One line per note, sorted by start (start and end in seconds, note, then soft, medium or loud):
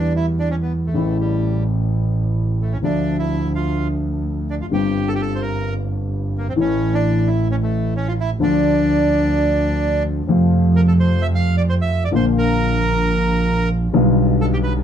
0.00 0.85 E2 medium
0.00 0.86 E2 medium
0.00 0.85 E3 medium
0.00 0.85 G3 soft
0.00 0.86 B3 soft
0.00 0.13 D4 medium
0.00 0.86 G4 soft
0.16 0.26 E4 medium
0.39 0.49 D4 medium
0.51 0.56 C#4 medium
0.63 0.73 B3 medium
0.86 1.18 A3 medium
0.93 2.74 A1 medium
0.93 2.74 A2 medium
0.93 2.73 C#3 soft
0.93 2.74 E3 soft
0.93 2.74 A3 soft
0.97 2.75 E4 medium
1.21 1.63 G3 medium
2.62 2.73 A3 soft
2.73 2.78 C#4 medium
2.82 4.62 D2 medium
2.82 4.62 D2 soft
2.82 4.62 D3 medium
2.82 4.62 F3 soft
2.82 4.63 A3 soft
2.82 3.17 D4 medium
2.82 4.63 E5 soft
3.19 3.52 E4 medium
3.55 3.88 F4 medium
4.50 4.55 D4 medium
4.61 4.66 F4 medium
4.70 6.47 G1 medium
4.70 6.47 G2 medium
4.70 6.46 D3 soft
4.70 6.47 G3 soft
4.70 6.48 C4 soft
4.70 5.08 G4 medium
4.74 6.48 G4 medium
5.08 5.14 A4 medium
5.15 5.22 G4 medium
5.22 5.41 A4 medium
5.35 5.42 C5 medium
5.42 5.74 A#4 medium
6.38 6.47 A#3 medium
6.49 6.53 C4 medium
6.56 8.32 A1 medium
6.56 8.32 A2 medium
6.56 8.32 E3 soft
6.56 8.33 A3 soft
6.56 8.33 E4 medium
6.61 6.94 C#4 medium
6.94 7.28 D4 medium
7.27 7.48 E4 medium
7.51 7.56 C#4 medium
7.63 7.94 A3 medium
7.96 8.08 C#4 medium
8.08 8.13 F4 medium
8.20 8.30 E4 medium
8.39 10.20 D2 medium
8.39 8.40 D3 medium
8.39 10.20 D3 medium
8.39 10.20 F3 soft
8.39 10.20 A3 soft
8.39 10.21 F4 medium
8.43 10.03 D4 medium
10.27 12.04 F2 medium
10.27 12.03 C3 soft
10.27 12.04 F3 medium
10.27 12.05 A3 soft
10.27 12.05 F4 medium
10.76 10.81 A#4 medium
10.88 10.93 A4 medium
11.00 11.23 C5 medium
11.22 11.27 E5 medium
11.35 11.56 F5 medium
11.57 11.62 D5 medium
11.69 11.74 C5 medium
11.81 12.04 E5 medium
12.05 12.09 D5 medium
12.11 13.85 A#1 medium
12.11 13.85 A#2 medium
12.11 13.84 D3 medium
12.11 13.84 F3 soft
12.11 13.85 A#3 medium
12.15 13.86 F4 medium
12.15 12.25 C5 medium
12.38 13.69 A#4 medium
13.92 14.83 B1 medium
13.92 14.83 B2 medium
13.92 14.83 D3 medium
13.92 14.83 G3 medium
13.92 14.83 B3 soft
13.92 14.83 F4 medium
14.41 14.46 A4 medium
14.53 14.58 G4 medium
14.63 14.73 B4 medium